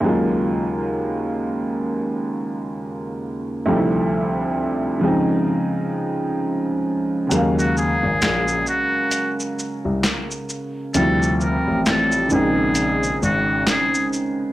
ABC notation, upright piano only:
X:1
M:4/4
L:1/8
Q:"Swing 16ths" 1/4=66
K:Ebdor
V:1 name="Upright piano" clef=bass
[E,,D,G,A,B,F]8 | [=D,,C,F,=G,=A,E=E]3 [_D,F,_A,C_E]4- [D,F,A,CE] | [D,G,A,B,f]8 | [C,F,=G,C=E]3 [D,_E,A,C_E]4- [D,E,A,CE] |]